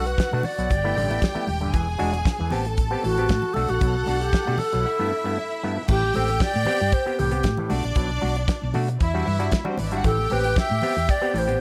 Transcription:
Already playing: fingered electric bass B1, string section F#4 F#5
0.06 alto flute B4, closed hi-hat
0.18 kick, snare, closed hi-hat
0.31 fingered electric bass B2, clav A3 D4 F#4, high conga
0.43 alto flute D5, open hi-hat, muted conga, low conga
0.58 fingered electric bass B1, clav B2 F#3, closed hi-hat
0.70 fingered electric bass G1, string section G4 G5, kick, closed hi-hat, muted conga
0.84 clav A3 B3 E4
0.96 fingered electric bass A1, clav G2 D3, open hi-hat
1.10 clav A3 B3 E4, closed hi-hat
1.22 kick, snare, closed hi-hat, high conga
1.35 clav A3 B3 E4, low conga
1.47 fingered electric bass D#1, open hi-hat, muted conga, high conga
1.61 clav G2 D3, closed hi-hat
1.73 fingered electric bass E1, clav E3, string section G#4 G#5, kick, closed hi-hat, muted conga, low conga
1.99 fingered electric bass E1, clav G#3 D4 F#4, open hi-hat, muted conga, high conga
2.13 clav D4 F#4, closed hi-hat
2.25 clav D4 F#4, kick, snare, closed hi-hat
2.39 fingered electric bass E2, clav E3, high conga
2.50 fingered electric bass A1, clav B3 C4 G4, string section A4 A5, open hi-hat, low conga
2.65 closed hi-hat
2.77 kick, closed hi-hat, muted conga
2.90 clav B3 C4 G4
3.03 fingered electric bass A1, clav A2 E3, alto flute F#4, open hi-hat, muted conga
3.17 clav B3 C4 G4, closed hi-hat
3.29 fingered electric bass A2, kick, snare, closed hi-hat, muted conga, high conga
3.42 low conga
3.54 fingered electric bass B1, clav A3 D4 F#4, alto flute A4, string section A4 F#5, open hi-hat, muted conga, high conga
3.68 fingered electric bass A#1, alto flute F#4, closed hi-hat
3.81 fingered electric bass B1, clav B2 F#3, kick, closed hi-hat, muted conga, low conga
4.06 fingered electric bass B1, clav D4 F#4, open hi-hat, muted conga, high conga
4.20 alto flute G4, closed hi-hat
4.32 kick, snare, closed hi-hat, muted conga
4.45 fingered electric bass B2, clav A3 D4 F#4, high conga
4.58 alto flute A4, open hi-hat, low conga
4.73 fingered electric bass B1, clav B2 F#3, closed hi-hat
4.85 string section E4 E5
4.99 clav G2 A3 B3 E4
5.24 clav G2 A3 B3 E4
5.63 clav G2 A3 B3 E4
5.77 clav B3 E4
5.88 fingered electric bass A1, clav A2 E3, string section G4 G5, alto flute G4, kick, crash, low conga
6.14 fingered electric bass A1, clav C4 G4, alto flute A4, open hi-hat, muted conga, high conga
6.28 closed hi-hat
6.40 alto flute D5, kick, snare, closed hi-hat
6.54 fingered electric bass A2, high conga
6.65 clav B3 C4 G4, open hi-hat, muted conga, low conga
6.80 fingered electric bass G2, closed hi-hat
6.92 alto flute C5, kick, closed hi-hat
7.06 clav B3 C4 G4
7.19 fingered electric bass C2, clav A2 E3, alto flute G4, open hi-hat
7.31 clav B3 C4 G4, closed hi-hat
7.43 fingered electric bass A2, clav C4 G4, kick, snare, closed hi-hat, muted conga, high conga
7.57 clav A2 E3, low conga
7.69 fingered electric bass B1, clav A3 D4 F#4, string section D4 D5, open hi-hat, high conga
7.82 fingered electric bass A#1, closed hi-hat
7.95 fingered electric bass B1, clav B2 F#3, kick, closed hi-hat, muted conga, low conga
8.21 fingered electric bass B1, clav D4 F#4, open hi-hat, muted conga, high conga
8.36 closed hi-hat
8.48 kick, snare, closed hi-hat
8.62 fingered electric bass B1, high conga
8.74 fingered electric bass B2, clav A3 D4 F#4, open hi-hat, muted conga, low conga
8.88 closed hi-hat
9.00 fingered electric bass E2, string section E4 E5, kick, closed hi-hat
9.14 clav G3 D4 F#4
9.25 fingered electric bass G2, clav E3, open hi-hat
9.39 clav G3 D4 F#4, closed hi-hat
9.52 kick, snare, closed hi-hat, muted conga, high conga
9.65 clav G3 D4 F#4, low conga
9.70 string section C4 C5
9.78 fingered electric bass G#1, clav E3, string section D4 D5, open hi-hat, muted conga, high conga
9.88 string section E4 E5, closed hi-hat
9.92 clav G3 D4 F#4
9.97 string section F#4 F#5
10.04 fingered electric bass A1, clav A2 E3, string section G4 G5, alto flute A4, kick, closed hi-hat, muted conga, low conga
10.30 fingered electric bass A1, clav C4 G4, alto flute B4, open hi-hat, muted conga, high conga
10.44 closed hi-hat
10.56 alto flute E5, kick, snare, closed hi-hat, muted conga
10.69 fingered electric bass A2, high conga
10.82 clav B3 C4 G4, open hi-hat, low conga
10.97 fingered electric bass E2, closed hi-hat
11.08 alto flute D5, kick, closed hi-hat, muted conga
11.21 clav B3 C4 G4
11.34 fingered electric bass A1, clav A2 E3, open hi-hat
11.38 alto flute C5
11.47 clav B3 C4 G4, closed hi-hat

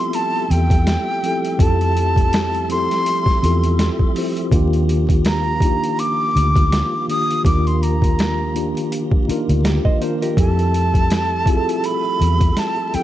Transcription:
Already playing: tine electric piano F3 B3 C4 E4 F4 G4 A4, tonewheel organ G3 A3 G4 E5, flute C6
0.13 flute A5, closed hi-hat
0.50 fingered electric bass E2, flute G5, closed hi-hat
0.70 kick, closed hi-hat
0.87 snare, closed hi-hat
1.23 tine electric piano F3 C4 E4 G4 A4, closed hi-hat
1.45 closed hi-hat
1.59 fingered electric bass F2, tine electric piano F3 C4 E4 G4 A4, flute A5, kick, closed hi-hat
1.81 closed hi-hat
1.97 closed hi-hat
2.16 kick, closed hi-hat
2.33 snare, closed hi-hat
2.55 closed hi-hat
2.69 tine electric piano F3 C4 E4 G4 A4, flute C6, closed hi-hat
2.91 snare, closed hi-hat
3.06 closed hi-hat
3.26 kick, snare
3.42 fingered electric bass E2, tine electric piano C4 E4 F4 G4 A4, closed hi-hat
3.64 closed hi-hat
3.79 snare, closed hi-hat
3.99 kick
4.15 tine electric piano F3 C4 E4 G4 C5, open hi-hat
4.37 closed hi-hat
4.51 fingered electric bass D#2, tine electric piano D#3 A#3 D4 F4 G4, tonewheel organ F3 A#3 F4, kick, closed hi-hat
4.73 closed hi-hat
4.89 closed hi-hat
5.09 kick, closed hi-hat
5.25 flute A#5, snare, closed hi-hat
5.60 tine electric piano A#3 D4 D#4 F4, kick, closed hi-hat
5.65 tine electric piano G4
5.84 closed hi-hat
5.99 flute D6, closed hi-hat
6.36 fingered electric bass D2, closed hi-hat
6.55 kick, closed hi-hat
6.72 snare, closed hi-hat
7.08 tine electric piano D#3 A#3 D4 F4 G4, flute D#6, closed hi-hat
7.31 closed hi-hat
7.44 fingered electric bass D#2, tine electric piano D#3 A#3 D4 F4 A#4, flute D6, kick, closed hi-hat
7.67 flute C6, closed hi-hat
7.83 flute A#5, closed hi-hat
8.02 kick, closed hi-hat
8.19 snare, closed hi-hat
8.54 tine electric piano D#3 A#3 D4 F4 G4, closed hi-hat
8.77 closed hi-hat
8.92 closed hi-hat
9.12 kick
9.28 tine electric piano A#3 D4 D#4 F4 A#4, muted fingered electric bass stroke, closed hi-hat
9.49 fingered electric bass D2, closed hi-hat
9.65 hollow-body jazz guitar G4 A#4, snare, closed hi-hat
9.85 hollow-body jazz guitar C5 D#5, kick
10.01 tine electric piano D#3 A#3 D4 F4 A#4, hollow-body jazz guitar C5, closed hi-hat
10.22 hollow-body jazz guitar G4 A#4, closed hi-hat
10.37 fingered electric bass F2, tine electric piano F3 C4 E4 G4 A4, tonewheel organ G3 A3 E5, flute A5, kick, closed hi-hat
10.59 closed hi-hat
10.74 closed hi-hat
10.94 kick, closed hi-hat
11.10 snare, closed hi-hat
11.46 tine electric piano C4 E4 F4 G4, kick, closed hi-hat
11.50 tine electric piano G#4
11.57 tine electric piano A4
11.69 closed hi-hat
11.84 flute B5, closed hi-hat
12.21 fingered electric bass E2, closed hi-hat
12.41 kick, closed hi-hat
12.57 flute A5, snare, closed hi-hat
12.93 tine electric piano F3 C4 E4 G4 A4, flute G5, muted fingered electric bass stroke, closed hi-hat

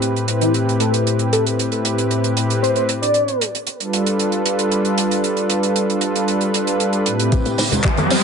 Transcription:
Already playing: analog synth pad A2 C4 E4 G4 B4
0.02 closed hi-hat
0.16 closed hi-hat
0.27 analog synth pad A2 C4 E4 G4 B4, closed hi-hat
0.41 analog synth lead E4, closed hi-hat
0.54 closed hi-hat
0.69 closed hi-hat
0.80 analog synth lead A4, closed hi-hat
0.94 closed hi-hat
1.07 closed hi-hat
1.19 closed hi-hat
1.33 analog synth lead A4, closed hi-hat
1.47 closed hi-hat
1.59 closed hi-hat
1.71 analog synth pad A2 C4 E4 G4 B4, closed hi-hat
1.85 closed hi-hat
1.98 closed hi-hat
2.11 closed hi-hat
2.24 closed hi-hat
2.36 analog synth pad A2 C4 E4 G4 B4, closed hi-hat
2.50 closed hi-hat
2.63 analog synth lead C5, closed hi-hat
2.76 analog synth lead C5, closed hi-hat
2.89 closed hi-hat
3.02 analog synth lead D5, closed hi-hat
3.14 closed hi-hat
3.28 closed hi-hat
3.41 closed hi-hat
3.55 closed hi-hat
3.67 closed hi-hat
3.80 analog synth pad G3 D4 F4 A4 B4, closed hi-hat
3.93 closed hi-hat
4.06 closed hi-hat
4.19 closed hi-hat
4.32 closed hi-hat
4.45 analog synth pad G3 D4 F4 A4 B4, closed hi-hat
4.59 closed hi-hat
4.72 closed hi-hat
4.85 closed hi-hat
4.98 closed hi-hat
5.11 closed hi-hat
5.24 closed hi-hat
5.37 closed hi-hat
5.50 closed hi-hat
5.63 closed hi-hat
5.76 closed hi-hat
5.89 analog synth pad G3 D4 F4 A4 B4, closed hi-hat
6.01 closed hi-hat
6.16 closed hi-hat
6.28 closed hi-hat
6.41 closed hi-hat
6.53 analog synth pad G3 D4 F4 A4 B4, closed hi-hat
6.67 closed hi-hat
6.80 closed hi-hat
6.93 closed hi-hat
7.06 analog synth pad A2 C4 E4 G4 B4, closed hi-hat
7.20 closed hi-hat
7.32 synth arpeggio sound G3, kick, closed hi-hat, tambourine, riser
7.45 synth arpeggio sound A3, closed hi-hat, tambourine
7.58 synth arpeggio sound C4, open hi-hat, tambourine, high bongo
7.72 synth arpeggio sound A3, closed hi-hat, tambourine, low conga
7.84 synth arpeggio sound G3, kick, clap, closed hi-hat, tambourine
7.97 synth arpeggio sound A3, analog synth pad C4 E4 G4 B4, closed hi-hat, tambourine, high conga
8.10 synth arpeggio sound C4, open hi-hat, tambourine

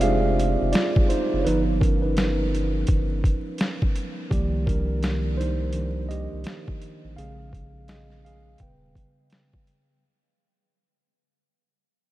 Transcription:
Already playing: sub bass F1, tine electric piano G#3 C4 D4 D#4 F4 G4 G#4 C5 D5 E5
0.01 tine electric piano G#3 D4 G4 G#4 F5, closed hi-hat
0.39 closed hi-hat
0.62 sub bass F1
0.72 tine electric piano F4 D5, snare, closed hi-hat
0.96 kick
1.09 tine electric piano D#4 C5, closed hi-hat
1.33 sub bass F#1
1.39 tine electric piano C#5
1.45 sub bass G1, tine electric piano F3 B3 D#4 B4, closed hi-hat
1.80 tine electric piano C#4 A#4, kick, closed hi-hat
2.02 tine electric piano D#4 B4
2.17 snare, closed hi-hat
2.55 closed hi-hat
2.87 sub bass G1, kick, closed hi-hat
3.24 kick, closed hi-hat
3.58 snare, closed hi-hat
3.82 kick
3.96 closed hi-hat
4.30 sub bass C2, tine electric piano D#3 F3 A#3 G4 D5, kick, closed hi-hat
4.67 tine electric piano D4 A#4, kick, closed hi-hat
5.03 snare, closed hi-hat
5.37 tine electric piano D#4 C5, closed hi-hat
5.73 tine electric piano D#3 F3 A#3 D4, closed hi-hat
6.09 tine electric piano G4 D#5, closed hi-hat
6.33 sub bass C2
6.44 snare, closed hi-hat
6.68 kick
6.82 closed hi-hat
7.04 sub bass A1
7.16 sub bass A#1, tine electric piano C#3 G#3 C4 G#4 F5, closed hi-hat
7.53 kick, closed hi-hat
7.88 tine electric piano G#4 D#5, snare, closed hi-hat
8.10 snare
8.25 tine electric piano G#4 F5, closed hi-hat
8.58 sub bass D#1, tine electric piano C#3 G3 B3 G5, kick, closed hi-hat
8.63 tine electric piano B4
8.95 kick, closed hi-hat
9.30 snare, closed hi-hat
9.53 kick
9.67 closed hi-hat

